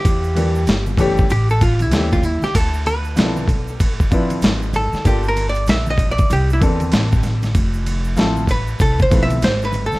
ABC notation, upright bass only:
X:1
M:4/4
L:1/16
Q:"Swing 16ths" 1/4=96
K:Ddor
V:1 name="Upright bass" clef=bass
E,,4 G,,,4 A,,,4 ^D,,3 z | D,,4 B,,,4 A,,,4 ^G,,,3 z | G,,,4 _B,,,4 C,,2 E,,2 A,,,4 | F,,,4 A,,,4 C,,2 B,,,2 ^G,,,3 z |]